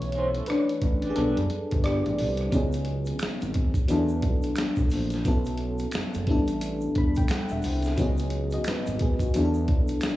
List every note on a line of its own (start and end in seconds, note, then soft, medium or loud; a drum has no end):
0.00 0.41 B1 loud
0.00 0.28 E3 soft
0.00 0.28 A3 soft
0.00 0.28 C#4 medium
0.00 0.45 E4 medium
0.00 0.50 C#5 medium
0.00 closed hi-hat soft
0.12 0.27 D#4 medium
0.12 0.28 G#4 medium
0.12 0.29 C5 medium
0.12 closed hi-hat medium
0.27 0.46 E4 medium
0.27 0.46 A4 medium
0.27 0.47 C#5 medium
0.35 closed hi-hat soft
0.46 1.07 D4 medium
0.46 1.12 B4 medium
0.46 cross-stick loud
0.46 closed hi-hat medium
0.69 closed hi-hat soft
0.82 1.13 A1 medium
0.82 kick medium
0.82 closed hi-hat medium
1.02 1.15 G4 medium
1.02 1.16 B4 medium
1.02 1.16 D5 medium
1.02 closed hi-hat soft
1.10 1.16 G#4 medium
1.16 1.35 B1 medium
1.16 2.49 G3 soft
1.16 2.49 B3 soft
1.16 1.81 D4 medium
1.16 1.40 G4 medium
1.16 1.86 A4 medium
1.16 1.40 B4 medium
1.16 1.41 D5 medium
1.16 closed hi-hat medium
1.37 1.49 F#1 medium
1.37 closed hi-hat soft
1.50 closed hi-hat medium
1.71 2.02 G1 medium
1.71 kick medium
1.71 closed hi-hat soft
1.84 2.36 G4 medium
1.84 2.34 D5 medium
1.84 cross-stick loud
1.84 closed hi-hat medium
2.06 2.21 A1 medium
2.06 closed hi-hat soft
2.19 2.49 C2 medium
2.19 open hi-hat soft
2.37 cross-stick soft
2.37 closed hi-hat soft
2.52 3.14 C#2 loud
2.52 3.86 F#3 medium
2.52 3.86 B3 medium
2.52 3.87 C#4 medium
2.52 3.87 D#4 medium
2.52 kick medium
2.52 closed hi-hat medium
2.52 shaker medium
2.56 3.88 G#4 medium
2.72 closed hi-hat soft
2.72 shaker soft
2.85 closed hi-hat medium
3.05 closed hi-hat soft
3.05 shaker soft
3.19 3.30 G#1 soft
3.19 finger snap medium
3.19 snare medium
3.19 closed hi-hat medium
3.19 shaker medium
3.41 3.72 G#1 medium
3.41 closed hi-hat soft
3.41 shaker soft
3.54 kick medium
3.54 closed hi-hat medium
3.74 kick medium
3.74 closed hi-hat soft
3.74 shaker soft
3.88 4.25 E2 loud
3.88 5.22 F#3 medium
3.88 5.22 B3 medium
3.88 5.23 D4 medium
3.88 5.23 E4 medium
3.88 closed hi-hat medium
3.88 shaker medium
3.92 5.24 A4 medium
4.08 shaker soft
4.22 4.54 B1 medium
4.22 kick medium
4.22 closed hi-hat medium
4.42 closed hi-hat soft
4.42 shaker soft
4.56 finger snap medium
4.56 snare loud
4.56 closed hi-hat medium
4.56 shaker medium
4.76 4.90 B1 medium
4.76 kick medium
4.76 shaker soft
4.90 5.23 A#1 medium
4.90 open hi-hat soft
4.90 shaker soft
5.10 snare soft
5.10 closed hi-hat soft
5.10 shaker soft
5.25 5.86 B1 loud
5.25 6.28 F#3 medium
5.25 6.27 B3 medium
5.25 6.28 C#4 medium
5.25 6.29 E4 medium
5.25 6.29 A4 medium
5.25 kick loud
5.25 closed hi-hat medium
5.25 shaker medium
5.45 closed hi-hat soft
5.45 shaker soft
5.58 closed hi-hat medium
5.78 closed hi-hat soft
5.78 shaker soft
5.91 6.03 F#1 soft
5.91 finger snap medium
5.91 snare loud
5.91 closed hi-hat medium
5.91 shaker medium
6.14 6.30 F#1 medium
6.14 closed hi-hat soft
6.14 shaker soft
6.27 6.89 A1 medium
6.27 7.94 G3 medium
6.27 7.95 B3 medium
6.27 7.95 D4 medium
6.27 7.96 E4 medium
6.27 kick loud
6.27 closed hi-hat medium
6.32 7.96 A4 medium
6.47 closed hi-hat soft
6.47 shaker soft
6.61 closed hi-hat medium
6.61 shaker medium
6.81 shaker soft
6.95 7.27 E1 medium
6.95 7.16 B5 medium
6.95 kick medium
6.95 closed hi-hat medium
7.15 7.29 G5 medium
7.15 kick medium
7.15 closed hi-hat soft
7.15 shaker soft
7.28 7.49 F#5 medium
7.28 finger snap medium
7.28 snare loud
7.28 closed hi-hat medium
7.28 shaker medium
7.49 7.63 E1 medium
7.49 7.95 E5 medium
7.49 shaker soft
7.62 7.95 C2 medium
7.62 open hi-hat medium
7.62 shaker soft
7.82 snare soft
7.82 closed hi-hat soft
7.82 shaker medium
7.97 8.59 C#2 loud
7.97 9.31 F#3 medium
7.97 8.31 B3 medium
7.97 8.32 C#4 medium
7.97 8.32 D#4 medium
7.97 kick loud
7.97 closed hi-hat medium
7.97 shaker medium
8.01 8.33 G#4 medium
8.17 closed hi-hat soft
8.17 shaker soft
8.30 closed hi-hat medium
8.51 8.66 F#4 medium
8.51 8.66 D#5 medium
8.51 closed hi-hat soft
8.51 shaker soft
8.64 8.75 G#1 soft
8.64 8.99 B4 medium
8.64 finger snap medium
8.64 snare loud
8.64 closed hi-hat medium
8.64 shaker medium
8.68 9.00 D#4 medium
8.86 9.18 G#1 medium
8.86 closed hi-hat soft
8.86 shaker soft
8.99 9.21 B3 medium
8.99 9.20 G#4 medium
8.99 kick medium
8.99 closed hi-hat medium
9.19 9.54 F#4 medium
9.19 kick medium
9.19 closed hi-hat soft
9.19 shaker soft
9.34 9.71 E2 loud
9.34 10.16 F#3 medium
9.34 10.16 B3 medium
9.34 10.16 D4 medium
9.34 10.16 E4 medium
9.34 closed hi-hat medium
9.34 shaker medium
9.38 9.44 G#4 medium
9.45 10.16 A4 medium
9.54 shaker soft
9.68 9.99 B1 medium
9.68 kick medium
9.68 closed hi-hat medium
9.87 closed hi-hat soft
9.87 shaker soft
10.01 finger snap medium
10.01 muted clean electric guitar stroke soft
10.01 snare loud
10.01 closed hi-hat medium
10.01 shaker medium